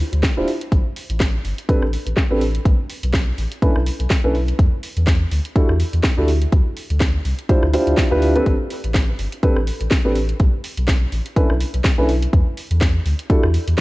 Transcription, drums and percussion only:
0.13 closed hi-hat medium
0.23 kick loud
0.23 snare loud
0.23 closed hi-hat medium
0.48 open hi-hat medium
0.61 closed hi-hat medium
0.72 kick loud
0.72 closed hi-hat medium
0.96 open hi-hat loud
1.10 closed hi-hat medium
1.20 kick loud
1.20 snare loud
1.20 closed hi-hat medium
1.45 open hi-hat medium
1.58 closed hi-hat medium
1.69 kick loud
1.69 closed hi-hat medium
1.82 cross-stick medium
1.93 open hi-hat loud
2.06 closed hi-hat medium
2.17 kick loud
2.17 snare loud
2.17 closed hi-hat medium
2.41 open hi-hat medium
2.55 closed hi-hat medium
2.65 kick loud
2.65 closed hi-hat medium
2.90 open hi-hat loud
3.03 closed hi-hat medium
3.13 kick loud
3.13 snare loud
3.13 closed hi-hat medium
3.38 open hi-hat medium
3.52 closed hi-hat medium
3.62 kick loud
3.62 closed hi-hat medium
3.76 cross-stick medium
3.86 open hi-hat loud
4.00 closed hi-hat medium
4.10 kick loud
4.10 snare loud
4.10 closed hi-hat medium
4.35 open hi-hat loud
4.48 closed hi-hat medium
4.59 kick loud
4.59 closed hi-hat soft
4.83 open hi-hat loud
4.97 closed hi-hat medium
5.07 kick loud
5.07 snare loud
5.07 closed hi-hat medium
5.32 open hi-hat medium
5.45 closed hi-hat medium
5.56 kick loud
5.56 closed hi-hat soft
5.69 cross-stick medium
5.80 open hi-hat loud
5.93 closed hi-hat medium
6.04 kick loud
6.04 snare loud
6.04 closed hi-hat medium
6.28 open hi-hat loud
6.42 closed hi-hat medium
6.53 kick loud
6.53 closed hi-hat soft
6.77 open hi-hat loud
6.90 closed hi-hat medium
7.00 kick loud
7.00 snare loud
7.00 closed hi-hat medium
7.25 open hi-hat medium
7.39 closed hi-hat medium
7.49 kick loud
7.49 closed hi-hat soft
7.63 cross-stick medium
7.74 open hi-hat loud
7.87 closed hi-hat medium
7.97 kick loud
7.97 snare loud
7.97 closed hi-hat medium
8.22 open hi-hat medium
8.35 closed hi-hat medium
8.46 kick loud
8.46 closed hi-hat medium
8.70 open hi-hat loud
8.84 closed hi-hat medium
8.94 kick loud
8.94 snare loud
8.94 closed hi-hat soft
9.19 open hi-hat medium
9.32 closed hi-hat medium
9.43 kick loud
9.43 closed hi-hat medium
9.56 cross-stick medium
9.67 open hi-hat loud
9.80 closed hi-hat medium
9.91 kick loud
9.91 snare loud
9.91 closed hi-hat medium
10.15 open hi-hat medium
10.29 closed hi-hat medium
10.39 kick loud
10.39 closed hi-hat medium
10.64 open hi-hat loud
10.77 closed hi-hat medium
10.87 kick loud
10.87 snare loud
10.87 closed hi-hat medium
11.12 open hi-hat medium
11.26 closed hi-hat medium
11.36 kick loud
11.36 closed hi-hat medium
11.50 cross-stick medium
11.61 open hi-hat loud
11.74 closed hi-hat medium
11.84 kick loud
11.84 snare loud
11.84 closed hi-hat medium
12.09 open hi-hat medium
12.22 closed hi-hat medium
12.33 kick loud
12.33 closed hi-hat medium
12.57 open hi-hat medium
12.71 closed hi-hat medium
12.81 kick loud
12.81 snare loud
12.81 closed hi-hat medium
13.06 open hi-hat medium
13.19 closed hi-hat medium
13.30 kick loud
13.30 closed hi-hat medium
13.43 cross-stick medium
13.54 open hi-hat loud
13.68 closed hi-hat medium

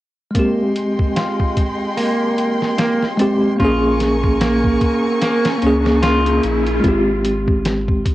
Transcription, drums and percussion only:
0.35 kick medium
0.35 closed hi-hat medium
0.76 closed hi-hat medium
0.99 kick medium
1.16 snare loud
1.16 closed hi-hat medium
1.40 kick medium
1.57 kick medium
1.57 closed hi-hat medium
1.97 open hi-hat medium
2.38 closed hi-hat medium
2.62 snare soft
2.78 snare loud
2.78 closed hi-hat medium
3.03 snare soft
3.19 closed hi-hat medium
3.60 kick loud
3.60 closed hi-hat medium
4.00 snare soft
4.00 closed hi-hat medium
4.24 kick medium
4.41 snare loud
4.41 closed hi-hat medium
4.64 kick medium
4.81 kick medium
4.81 closed hi-hat medium
5.22 snare medium
5.22 closed hi-hat medium
5.45 snare loud
5.45 closed hi-hat medium
5.62 closed hi-hat medium
5.86 snare medium
6.03 snare loud
6.03 closed hi-hat medium
6.26 closed hi-hat soft
6.43 closed hi-hat medium
6.67 closed hi-hat soft
6.84 kick medium
6.84 closed hi-hat medium
7.25 closed hi-hat medium
7.48 kick medium
7.65 snare loud
7.65 closed hi-hat medium
7.88 kick medium
8.05 kick medium
8.05 closed hi-hat medium

